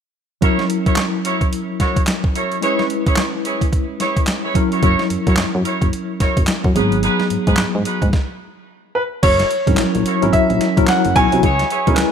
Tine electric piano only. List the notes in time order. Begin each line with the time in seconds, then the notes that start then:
0.41 F#3 C#4 E4 A#4
2.61 G#3 C#4 E4 B4
4.54 F#3 C#4 E4 A#4
6.74 F#3 B3 D#4 G#4
9.66 F#3 C#4 E4 A#4
10.22 F#3 C#4 E4 A#4
10.77 F#3 C#4 E4 A#4
11.32 F#3 C#4 E4 F#4
11.87 G#3 C#4 E4 A#4
11.94 B4